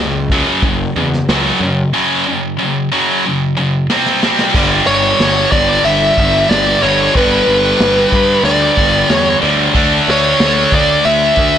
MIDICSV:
0, 0, Header, 1, 5, 480
1, 0, Start_track
1, 0, Tempo, 651466
1, 1422, Time_signature, 4, 2, 24, 8
1, 8535, End_track
2, 0, Start_track
2, 0, Title_t, "Lead electric guitar"
2, 0, Program_c, 0, 29
2, 3585, Note_on_c, 0, 73, 111
2, 4064, Note_off_c, 0, 73, 0
2, 4067, Note_on_c, 0, 74, 94
2, 4307, Note_on_c, 0, 76, 114
2, 4315, Note_off_c, 0, 74, 0
2, 4785, Note_on_c, 0, 74, 98
2, 4802, Note_off_c, 0, 76, 0
2, 5028, Note_off_c, 0, 74, 0
2, 5031, Note_on_c, 0, 73, 83
2, 5252, Note_off_c, 0, 73, 0
2, 5282, Note_on_c, 0, 71, 86
2, 6223, Note_off_c, 0, 71, 0
2, 6226, Note_on_c, 0, 74, 81
2, 6690, Note_off_c, 0, 74, 0
2, 6690, Note_on_c, 0, 73, 81
2, 6914, Note_off_c, 0, 73, 0
2, 7447, Note_on_c, 0, 73, 107
2, 7917, Note_off_c, 0, 73, 0
2, 7920, Note_on_c, 0, 74, 103
2, 8132, Note_off_c, 0, 74, 0
2, 8142, Note_on_c, 0, 76, 106
2, 8535, Note_off_c, 0, 76, 0
2, 8535, End_track
3, 0, Start_track
3, 0, Title_t, "Distorted electric guitar"
3, 0, Program_c, 1, 30
3, 0, Note_on_c, 1, 42, 74
3, 0, Note_on_c, 1, 49, 75
3, 200, Note_off_c, 1, 42, 0
3, 202, Note_off_c, 1, 49, 0
3, 233, Note_on_c, 1, 42, 77
3, 238, Note_on_c, 1, 49, 85
3, 241, Note_on_c, 1, 54, 105
3, 452, Note_off_c, 1, 42, 0
3, 454, Note_off_c, 1, 49, 0
3, 456, Note_off_c, 1, 54, 0
3, 472, Note_on_c, 1, 42, 76
3, 478, Note_on_c, 1, 49, 83
3, 682, Note_off_c, 1, 42, 0
3, 685, Note_off_c, 1, 49, 0
3, 716, Note_on_c, 1, 42, 64
3, 719, Note_on_c, 1, 49, 68
3, 925, Note_off_c, 1, 42, 0
3, 926, Note_off_c, 1, 49, 0
3, 956, Note_on_c, 1, 42, 80
3, 957, Note_on_c, 1, 49, 96
3, 960, Note_on_c, 1, 54, 93
3, 1175, Note_off_c, 1, 42, 0
3, 1175, Note_off_c, 1, 49, 0
3, 1177, Note_off_c, 1, 54, 0
3, 1199, Note_on_c, 1, 42, 68
3, 1201, Note_on_c, 1, 49, 74
3, 1407, Note_off_c, 1, 42, 0
3, 1408, Note_off_c, 1, 49, 0
3, 1426, Note_on_c, 1, 42, 81
3, 1429, Note_on_c, 1, 54, 97
3, 1430, Note_on_c, 1, 49, 88
3, 1651, Note_off_c, 1, 42, 0
3, 1652, Note_off_c, 1, 54, 0
3, 1653, Note_off_c, 1, 49, 0
3, 1672, Note_on_c, 1, 42, 66
3, 1675, Note_on_c, 1, 49, 73
3, 1884, Note_off_c, 1, 42, 0
3, 1886, Note_off_c, 1, 49, 0
3, 1905, Note_on_c, 1, 42, 77
3, 1910, Note_on_c, 1, 49, 77
3, 2121, Note_off_c, 1, 42, 0
3, 2124, Note_off_c, 1, 49, 0
3, 2149, Note_on_c, 1, 42, 97
3, 2155, Note_on_c, 1, 49, 90
3, 2157, Note_on_c, 1, 54, 100
3, 2373, Note_off_c, 1, 42, 0
3, 2376, Note_off_c, 1, 49, 0
3, 2377, Note_off_c, 1, 54, 0
3, 2400, Note_on_c, 1, 42, 86
3, 2401, Note_on_c, 1, 49, 85
3, 2609, Note_off_c, 1, 42, 0
3, 2610, Note_off_c, 1, 49, 0
3, 2628, Note_on_c, 1, 42, 68
3, 2630, Note_on_c, 1, 49, 68
3, 2844, Note_off_c, 1, 42, 0
3, 2844, Note_off_c, 1, 49, 0
3, 2874, Note_on_c, 1, 48, 82
3, 2874, Note_on_c, 1, 55, 81
3, 2879, Note_on_c, 1, 60, 97
3, 3096, Note_off_c, 1, 48, 0
3, 3096, Note_off_c, 1, 55, 0
3, 3099, Note_off_c, 1, 60, 0
3, 3112, Note_on_c, 1, 48, 80
3, 3119, Note_on_c, 1, 55, 98
3, 3121, Note_on_c, 1, 60, 91
3, 3335, Note_off_c, 1, 48, 0
3, 3339, Note_off_c, 1, 55, 0
3, 3340, Note_off_c, 1, 60, 0
3, 3349, Note_on_c, 1, 43, 96
3, 3355, Note_on_c, 1, 50, 104
3, 3369, Note_on_c, 1, 55, 101
3, 5014, Note_off_c, 1, 43, 0
3, 5017, Note_off_c, 1, 50, 0
3, 5017, Note_off_c, 1, 55, 0
3, 5026, Note_on_c, 1, 55, 92
3, 5035, Note_on_c, 1, 50, 90
3, 5041, Note_on_c, 1, 43, 72
3, 5252, Note_off_c, 1, 55, 0
3, 5256, Note_off_c, 1, 43, 0
3, 5256, Note_off_c, 1, 50, 0
3, 5265, Note_on_c, 1, 43, 98
3, 5275, Note_on_c, 1, 50, 89
3, 5287, Note_on_c, 1, 55, 91
3, 6927, Note_off_c, 1, 43, 0
3, 6929, Note_off_c, 1, 55, 0
3, 6932, Note_off_c, 1, 50, 0
3, 6938, Note_on_c, 1, 55, 80
3, 6945, Note_on_c, 1, 50, 80
3, 6952, Note_on_c, 1, 43, 67
3, 7165, Note_off_c, 1, 55, 0
3, 7169, Note_off_c, 1, 50, 0
3, 7172, Note_off_c, 1, 43, 0
3, 7176, Note_on_c, 1, 50, 91
3, 7182, Note_on_c, 1, 57, 90
3, 7190, Note_on_c, 1, 62, 109
3, 8535, Note_off_c, 1, 50, 0
3, 8535, Note_off_c, 1, 57, 0
3, 8535, Note_off_c, 1, 62, 0
3, 8535, End_track
4, 0, Start_track
4, 0, Title_t, "Picked electric bass"
4, 0, Program_c, 2, 34
4, 0, Note_on_c, 2, 37, 87
4, 311, Note_off_c, 2, 37, 0
4, 463, Note_on_c, 2, 30, 96
4, 625, Note_off_c, 2, 30, 0
4, 710, Note_on_c, 2, 40, 92
4, 870, Note_off_c, 2, 40, 0
4, 949, Note_on_c, 2, 37, 92
4, 1110, Note_off_c, 2, 37, 0
4, 1181, Note_on_c, 2, 42, 87
4, 1345, Note_off_c, 2, 42, 0
4, 3349, Note_on_c, 2, 31, 96
4, 3534, Note_off_c, 2, 31, 0
4, 3590, Note_on_c, 2, 31, 91
4, 3774, Note_off_c, 2, 31, 0
4, 3828, Note_on_c, 2, 31, 86
4, 4013, Note_off_c, 2, 31, 0
4, 4072, Note_on_c, 2, 31, 83
4, 4256, Note_off_c, 2, 31, 0
4, 4306, Note_on_c, 2, 31, 93
4, 4492, Note_off_c, 2, 31, 0
4, 4558, Note_on_c, 2, 31, 96
4, 4739, Note_off_c, 2, 31, 0
4, 4781, Note_on_c, 2, 31, 86
4, 4968, Note_off_c, 2, 31, 0
4, 5033, Note_on_c, 2, 31, 96
4, 5216, Note_off_c, 2, 31, 0
4, 5274, Note_on_c, 2, 31, 99
4, 5456, Note_off_c, 2, 31, 0
4, 5507, Note_on_c, 2, 31, 96
4, 5692, Note_off_c, 2, 31, 0
4, 5750, Note_on_c, 2, 31, 85
4, 5933, Note_off_c, 2, 31, 0
4, 5991, Note_on_c, 2, 43, 85
4, 6174, Note_off_c, 2, 43, 0
4, 6215, Note_on_c, 2, 38, 93
4, 6403, Note_off_c, 2, 38, 0
4, 6470, Note_on_c, 2, 31, 99
4, 6652, Note_off_c, 2, 31, 0
4, 6703, Note_on_c, 2, 40, 90
4, 6888, Note_off_c, 2, 40, 0
4, 6946, Note_on_c, 2, 38, 98
4, 7130, Note_off_c, 2, 38, 0
4, 7184, Note_on_c, 2, 38, 99
4, 7368, Note_off_c, 2, 38, 0
4, 7428, Note_on_c, 2, 38, 93
4, 7610, Note_off_c, 2, 38, 0
4, 7664, Note_on_c, 2, 38, 99
4, 7848, Note_off_c, 2, 38, 0
4, 7901, Note_on_c, 2, 38, 83
4, 8085, Note_off_c, 2, 38, 0
4, 8147, Note_on_c, 2, 38, 95
4, 8328, Note_off_c, 2, 38, 0
4, 8382, Note_on_c, 2, 38, 97
4, 8535, Note_off_c, 2, 38, 0
4, 8535, End_track
5, 0, Start_track
5, 0, Title_t, "Drums"
5, 220, Note_on_c, 9, 36, 77
5, 226, Note_on_c, 9, 38, 32
5, 294, Note_off_c, 9, 36, 0
5, 300, Note_off_c, 9, 38, 0
5, 459, Note_on_c, 9, 46, 58
5, 461, Note_on_c, 9, 36, 110
5, 533, Note_off_c, 9, 46, 0
5, 535, Note_off_c, 9, 36, 0
5, 835, Note_on_c, 9, 38, 31
5, 909, Note_off_c, 9, 38, 0
5, 945, Note_on_c, 9, 46, 56
5, 949, Note_on_c, 9, 38, 116
5, 1018, Note_off_c, 9, 46, 0
5, 1023, Note_off_c, 9, 38, 0
5, 2871, Note_on_c, 9, 38, 64
5, 2945, Note_off_c, 9, 38, 0
5, 2993, Note_on_c, 9, 38, 62
5, 3067, Note_off_c, 9, 38, 0
5, 3116, Note_on_c, 9, 38, 90
5, 3189, Note_off_c, 9, 38, 0
5, 3233, Note_on_c, 9, 38, 87
5, 3306, Note_off_c, 9, 38, 0
5, 3349, Note_on_c, 9, 36, 126
5, 3353, Note_on_c, 9, 49, 125
5, 3353, Note_on_c, 9, 57, 66
5, 3423, Note_off_c, 9, 36, 0
5, 3427, Note_off_c, 9, 49, 0
5, 3427, Note_off_c, 9, 57, 0
5, 3829, Note_on_c, 9, 57, 62
5, 3833, Note_on_c, 9, 38, 108
5, 3903, Note_off_c, 9, 57, 0
5, 3907, Note_off_c, 9, 38, 0
5, 4069, Note_on_c, 9, 36, 92
5, 4142, Note_off_c, 9, 36, 0
5, 4310, Note_on_c, 9, 57, 62
5, 4384, Note_off_c, 9, 57, 0
5, 4551, Note_on_c, 9, 36, 81
5, 4624, Note_off_c, 9, 36, 0
5, 4792, Note_on_c, 9, 57, 67
5, 4796, Note_on_c, 9, 38, 119
5, 4865, Note_off_c, 9, 57, 0
5, 4870, Note_off_c, 9, 38, 0
5, 5271, Note_on_c, 9, 36, 111
5, 5271, Note_on_c, 9, 57, 59
5, 5344, Note_off_c, 9, 36, 0
5, 5345, Note_off_c, 9, 57, 0
5, 5746, Note_on_c, 9, 57, 69
5, 5750, Note_on_c, 9, 38, 123
5, 5820, Note_off_c, 9, 57, 0
5, 5824, Note_off_c, 9, 38, 0
5, 5986, Note_on_c, 9, 36, 91
5, 6060, Note_off_c, 9, 36, 0
5, 6223, Note_on_c, 9, 57, 68
5, 6297, Note_off_c, 9, 57, 0
5, 6465, Note_on_c, 9, 36, 88
5, 6539, Note_off_c, 9, 36, 0
5, 6701, Note_on_c, 9, 57, 73
5, 6706, Note_on_c, 9, 38, 116
5, 6775, Note_off_c, 9, 57, 0
5, 6780, Note_off_c, 9, 38, 0
5, 7180, Note_on_c, 9, 57, 69
5, 7182, Note_on_c, 9, 36, 107
5, 7254, Note_off_c, 9, 57, 0
5, 7256, Note_off_c, 9, 36, 0
5, 7659, Note_on_c, 9, 57, 68
5, 7664, Note_on_c, 9, 38, 113
5, 7733, Note_off_c, 9, 57, 0
5, 7738, Note_off_c, 9, 38, 0
5, 7900, Note_on_c, 9, 36, 88
5, 7974, Note_off_c, 9, 36, 0
5, 8136, Note_on_c, 9, 57, 66
5, 8210, Note_off_c, 9, 57, 0
5, 8379, Note_on_c, 9, 36, 78
5, 8453, Note_off_c, 9, 36, 0
5, 8535, End_track
0, 0, End_of_file